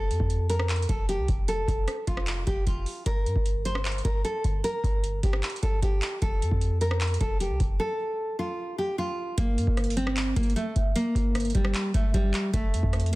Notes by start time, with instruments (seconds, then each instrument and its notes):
Already playing: 808-style bass F1, nylon-string guitar A4
0.10 808-style bass F2, closed hi-hat
0.20 808-style bass F2, kick
0.30 closed hi-hat
0.50 nylon-string guitar A#4, closed hi-hat
0.59 cross-stick
0.69 clap, closed hi-hat
0.76 closed hi-hat
0.82 closed hi-hat
0.89 808-style bass F1, nylon-string guitar A4, kick, closed hi-hat
1.09 nylon-string guitar G4, closed hi-hat
1.19 808-style bass C2
1.28 808-style bass F1, kick, closed hi-hat
1.48 nylon-string guitar A4, closed hi-hat
1.68 808-style bass F1, kick, closed hi-hat
1.88 cross-stick, closed hi-hat
2.07 808-style bass F1, nylon-string guitar F4, kick, closed hi-hat
2.17 cross-stick
2.27 clap, closed hi-hat
2.47 808-style bass F1, nylon-string guitar G4, kick, closed hi-hat
2.67 808-style bass F1, nylon-string guitar F4, kick, closed hi-hat
2.86 open hi-hat
3.06 808-style bass G1, nylon-string guitar A#4, kick, closed hi-hat
3.26 808-style bass G2, closed hi-hat
3.36 808-style bass G1, kick
3.46 closed hi-hat
3.65 nylon-string guitar C5, closed hi-hat
3.75 cross-stick
3.85 clap, closed hi-hat
3.92 closed hi-hat
3.98 closed hi-hat
4.05 808-style bass G1, nylon-string guitar A#4, kick, closed hi-hat
4.25 nylon-string guitar A4, closed hi-hat
4.44 808-style bass G1, kick, closed hi-hat
4.64 nylon-string guitar A#4, closed hi-hat
4.84 808-style bass G1, kick, closed hi-hat
5.04 closed hi-hat
5.23 808-style bass G1, nylon-string guitar G4, kick, closed hi-hat
5.33 cross-stick
5.43 clap, closed hi-hat
5.50 closed hi-hat
5.56 closed hi-hat
5.63 808-style bass G1, nylon-string guitar A4, kick, closed hi-hat
5.82 808-style bass G1, nylon-string guitar G4, kick, closed hi-hat
6.02 clap, closed hi-hat
6.22 808-style bass F1, nylon-string guitar A4, kick, closed hi-hat
6.42 808-style bass F2, closed hi-hat
6.51 808-style bass F2, kick
6.61 closed hi-hat
6.81 nylon-string guitar A#4, closed hi-hat
6.91 cross-stick
7.01 clap, closed hi-hat
7.07 closed hi-hat
7.14 closed hi-hat
7.21 808-style bass F1, nylon-string guitar A4, kick, closed hi-hat
7.40 nylon-string guitar G4, closed hi-hat
7.50 808-style bass C2
7.60 808-style bass F1, kick, closed hi-hat
7.80 nylon-string guitar A4
8.39 nylon-string guitar F4
8.78 nylon-string guitar G4
8.98 nylon-string guitar F4
9.38 808-style bass G1, nylon-string guitar A#3, kick, closed hi-hat
9.57 808-style bass G2, closed hi-hat
9.67 808-style bass G1, kick
9.77 cross-stick, closed hi-hat
9.84 closed hi-hat
9.90 closed hi-hat
9.97 nylon-string guitar C4, closed hi-hat
10.07 cross-stick
10.16 clap, closed hi-hat
10.36 808-style bass G1, nylon-string guitar A#3, kick, closed hi-hat
10.43 closed hi-hat
10.50 closed hi-hat
10.56 nylon-string guitar A3, closed hi-hat
10.76 808-style bass G1, kick, closed hi-hat
10.96 nylon-string guitar A#3, closed hi-hat
11.15 808-style bass G1, kick, closed hi-hat
11.35 cross-stick, closed hi-hat
11.40 closed hi-hat
11.45 closed hi-hat
11.50 closed hi-hat
11.55 808-style bass G1, nylon-string guitar G3, kick, closed hi-hat
11.65 cross-stick
11.74 clap, closed hi-hat
11.94 808-style bass G1, nylon-string guitar A3, kick, closed hi-hat
12.14 808-style bass G1, nylon-string guitar G3, kick, closed hi-hat
12.34 clap, closed hi-hat
12.53 808-style bass F1, nylon-string guitar A3, kick, closed hi-hat
12.73 808-style bass F2, closed hi-hat
12.83 808-style bass F2, kick
12.93 cross-stick, closed hi-hat
13.00 closed hi-hat
13.06 closed hi-hat